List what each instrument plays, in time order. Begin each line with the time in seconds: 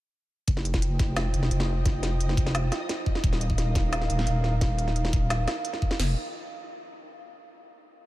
0.48 wobble bass F1, synth texture D#4 D#5, analog synth pad F4 C5 G5, kick, closed hi-hat
0.57 snare
0.65 closed hi-hat
0.74 kick, snare
0.82 closed hi-hat
0.99 wobble bass F1, kick, snare, closed hi-hat
1.16 snare, closed hi-hat
1.34 wobble bass F1, closed hi-hat
1.43 snare
1.51 wobble bass F1, closed hi-hat
1.60 snare
1.86 kick, snare, closed hi-hat
2.03 snare, closed hi-hat
2.20 closed hi-hat
2.29 snare
2.37 wobble bass F1, kick, closed hi-hat
2.46 snare
2.55 snare, closed hi-hat
2.72 snare, closed hi-hat
2.89 snare, closed hi-hat
3.06 kick
3.15 snare
3.23 wobble bass D#1, analog synth pad D#4 A#4 F5, kick, closed hi-hat
3.33 snare
3.41 closed hi-hat
3.50 kick
3.58 snare, closed hi-hat
3.75 wobble bass D#1, kick, snare, closed hi-hat
3.93 snare, closed hi-hat
4.01 snare
4.10 wobble bass D#1, closed hi-hat
4.19 snare
4.27 wobble bass D#1, closed hi-hat
4.44 snare
4.61 kick, snare, closed hi-hat
4.78 closed hi-hat
4.88 snare
4.96 closed hi-hat
5.05 snare
5.13 wobble bass D#1, kick, closed hi-hat
5.30 snare, closed hi-hat
5.48 snare, closed hi-hat
5.65 closed hi-hat
5.73 snare
5.82 kick
5.91 snare
5.99 wobble bass F1, analog synth pad F4 C5 G5, snare, crash